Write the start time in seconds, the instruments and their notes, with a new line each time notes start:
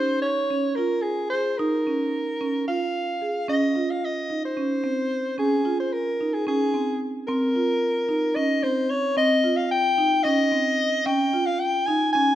Already playing: marimba C#4, soprano saxophone C5
0.22 soprano saxophone C#5
0.50 marimba C#4
0.75 marimba F4, soprano saxophone A#4
1.02 soprano saxophone G#4
1.30 marimba G#4, soprano saxophone C5
1.58 marimba D#4, soprano saxophone A#4
1.87 marimba C#4
2.41 marimba C#4
2.68 marimba F4, soprano saxophone F5
3.21 marimba G#4
3.48 marimba C#4, soprano saxophone D#5
3.75 marimba F4
3.90 soprano saxophone F5
4.05 soprano saxophone D#5
4.30 marimba D#4
4.45 soprano saxophone C5
4.57 marimba C#4
4.84 marimba C4
5.38 marimba C#4, soprano saxophone G#4
5.65 marimba F4
5.80 soprano saxophone C5
5.93 soprano saxophone A#4
6.21 marimba D#4
6.34 soprano saxophone G#4
6.47 marimba C#4, soprano saxophone G#4
6.74 marimba C4
7.27 marimba C4, soprano saxophone A#4
7.55 marimba F4
8.09 marimba D#4
8.36 marimba C#4, soprano saxophone D#5
8.63 marimba C4, soprano saxophone C5
8.90 soprano saxophone C#5
9.17 marimba C4, soprano saxophone D#5
9.44 marimba F4
9.56 soprano saxophone F5
9.71 soprano saxophone G5
9.98 marimba D#4
10.23 marimba C#4, soprano saxophone D#5
10.52 marimba C4
11.06 marimba C#4, soprano saxophone G5
11.33 marimba F4
11.46 soprano saxophone F5
11.59 soprano saxophone G5
11.86 marimba D#4, soprano saxophone G#5
12.13 marimba C#4, soprano saxophone G#5